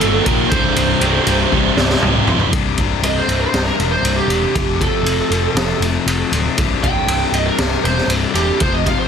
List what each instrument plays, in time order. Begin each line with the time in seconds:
Already playing: lead electric guitar A4
0.01 picked electric bass G1, overdriven electric guitar D#2 A#2 D#3, ride
0.24 picked electric bass A#1, overdriven electric guitar D#2 A#2 D#3, lead electric guitar A#4, kick, ride
0.50 picked electric bass C1, overdriven electric guitar C2 G2 C3, lead electric guitar C5, kick, ride
0.76 picked electric bass C1, ride
1.00 picked electric bass C1, overdriven electric guitar C2 G2 C3, ride
1.27 picked electric bass C1, overdriven electric guitar C2 G2 C3, ride
1.52 picked electric bass C1, overdriven electric guitar C2 G2 C3, kick
1.77 picked electric bass C1, snare
1.90 snare
2.01 picked electric bass C1, overdriven electric guitar C2 G2 C3, mid tom
2.27 picked electric bass C1, overdriven electric guitar C2 G2 C3, floor tom
2.40 floor tom
2.52 picked electric bass C1, overdriven electric guitar C2 G2 C3, kick, ride
2.78 picked electric bass C1, overdriven electric guitar C2 G2 C3, kick, ride
3.02 picked electric bass C1, overdriven electric guitar C2 G2 C3, lead electric guitar D#5, ride
3.17 lead electric guitar C5
3.28 picked electric bass C1, overdriven electric guitar C2 G2 C3, ride
3.41 lead electric guitar C5
3.53 picked electric bass C1, overdriven electric guitar C2 G2 C3, snare, ride
3.65 lead electric guitar A#4
3.79 picked electric bass E1, overdriven electric guitar C2 G2 C3, ride
3.92 lead electric guitar C5
4.02 picked electric bass C1, overdriven electric guitar C2 G2 C3, ride
4.16 lead electric guitar G4
4.27 picked electric bass E1, overdriven electric guitar C2 G2 C3, ride
4.55 picked electric bass F1, overdriven electric guitar F2 C3 F3, kick, ride
4.81 overdriven electric guitar F2 C3 F3, lead electric guitar A4, kick, ride
5.02 picked electric bass F1, overdriven electric guitar F2 C3, ride
5.07 overdriven electric guitar F3
5.30 picked electric bass F1, overdriven electric guitar F2 C3 F3, ride
5.55 picked electric bass F1, overdriven electric guitar F2 C3 F3, snare, ride
5.80 picked electric bass F1, overdriven electric guitar F2 C3 F3, ride
6.06 picked electric bass F1, overdriven electric guitar F2 C3 F3, ride
6.31 picked electric bass D1, overdriven electric guitar F2 C3 F3, ride
6.57 picked electric bass C1, overdriven electric guitar C2 G2 C3, kick, ride
6.83 picked electric bass C1, overdriven electric guitar C2 G2 C3, lead electric guitar G5, kick, ride
7.07 picked electric bass C1, overdriven electric guitar C2 G2 C3, ride
7.32 picked electric bass C1, overdriven electric guitar C2 G2 C3, lead electric guitar D#5, ride
7.46 lead electric guitar A#4
7.58 picked electric bass C1, overdriven electric guitar C2 G2 C3, snare, ride
7.83 picked electric bass E1, overdriven electric guitar C2 G2 C3, lead electric guitar C5, ride
7.98 snare
8.07 picked electric bass C1, overdriven electric guitar C2 G2 C3, ride
8.34 picked electric bass E1, overdriven electric guitar C2 G2 C3, lead electric guitar G4, ride
8.60 picked electric bass F1, overdriven electric guitar F2 C3 F3, lead electric guitar C5, kick, ride
8.74 lead electric guitar D#5
8.85 overdriven electric guitar F2 C3 F3, lead electric guitar F5, kick, ride
9.00 lead electric guitar C5